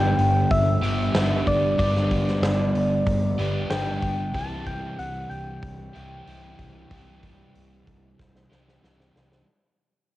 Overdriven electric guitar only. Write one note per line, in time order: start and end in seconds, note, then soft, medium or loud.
0.00 0.80 G2 medium
0.00 0.80 D3 medium
0.00 0.83 G3 medium
0.00 0.81 B3 medium
0.00 0.81 D4 medium
0.00 0.81 G4 medium
0.82 1.13 G2 medium
0.82 1.13 D3 medium
0.82 1.14 G3 medium
0.82 1.13 B3 medium
0.82 1.13 D4 medium
0.82 1.16 G4 medium
1.14 1.76 G2 medium
1.14 1.77 D3 medium
1.14 1.79 G3 medium
1.14 1.77 B3 medium
1.14 1.77 D4 medium
1.14 1.80 G4 medium
1.77 3.36 G2 medium
1.77 3.36 D3 medium
1.77 3.39 G3 medium
1.77 3.37 B3 medium
1.77 3.37 D4 medium
1.77 3.38 G4 medium
3.38 3.69 G2 medium
3.38 3.69 D3 medium
3.38 3.71 G3 medium
3.38 3.69 B3 medium
3.38 3.69 D4 medium
3.38 3.72 G4 medium
3.70 4.32 G2 medium
3.70 4.33 D3 medium
3.70 4.34 G3 medium
3.70 4.33 B3 medium
3.70 4.33 D4 medium
3.70 4.36 G4 medium
4.34 5.96 C3 medium
4.34 5.96 E3 medium
4.34 5.95 G3 medium
4.34 5.94 E4 medium
4.34 5.93 G4 medium
5.93 6.25 C3 medium
5.93 6.26 E3 medium
5.93 6.27 G3 medium
5.93 6.27 E4 medium
5.93 6.28 G4 medium
6.26 6.89 C3 medium
6.26 6.89 E3 medium
6.26 6.90 G3 medium
6.26 6.91 E4 medium
6.26 6.92 G4 medium
6.89 8.48 C3 medium
6.89 8.48 E3 medium
6.89 8.49 G3 medium
6.89 8.49 E4 medium
6.89 8.48 G4 medium
8.50 8.80 C3 medium
8.50 8.81 E3 medium
8.50 8.81 G3 medium
8.50 8.81 E4 medium
8.50 8.80 G4 medium
8.82 9.44 C3 medium
8.82 9.45 E3 medium
8.82 9.45 G3 medium
8.82 9.45 E4 medium
8.82 9.46 G4 medium